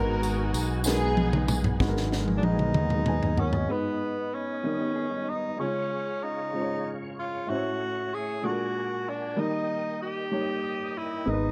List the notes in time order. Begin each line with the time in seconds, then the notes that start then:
Already playing: G#1 G#2 G#3 B3 D#4 F#4 G#4 A#4 F#5 G#5
0.00 A#4
0.23 closed hi-hat, tambourine
0.53 B1, closed hi-hat, tambourine
0.84 G#3 B3 D#4 F#4 G#4 A#4, snare, tambourine
1.17 high tom
1.33 mid tom
1.48 mid tom, tambourine
1.64 floor tom
1.80 G#1 G#2 F#3 G#3 B3 D#4 F#4 G#4, kick, snare
1.88 A#4
1.97 snare
2.12 snare
2.28 high tom
2.38 D4
2.43 A#1 D#4, high tom
2.59 mid tom
2.74 D#2, mid tom
2.90 mid tom
3.06 B4 G#5, mid tom
3.23 floor tom
3.37 C#4 A#4 F#5, floor tom
3.53 F#4 D#5, floor tom
3.68 G#2 G#3 B3 D#4 B4 D#5
4.34 C#4
4.63 D#3 G3 B3 D#4 A#4
4.80 B3 G4
4.96 B3 G#4
5.10 G3 D#4
5.30 D#4
5.57 C#3 G#3 C#4 F4 G#4 C#5 F5 C#6
6.23 D#4
6.52 G#3 C#4 F4 C5
6.61 C#5
7.19 F4
7.47 A2 A3 C#4 E4 F#4 C5 E5
7.55 C#5
8.14 G#4
8.42 A#2 G#3 D4 F#4 A4 A#4 F#5 G#5 D6
8.51 A#4
9.09 D4
9.36 D#3 G3 A#3 D#4 A#4 D#5 G5 D#6
10.02 G4
10.31 G3 A#3 D#4 C#5
10.98 E4
11.25 G#1 G#2 G#3 B3 D#4 A#4 B4
11.33 B4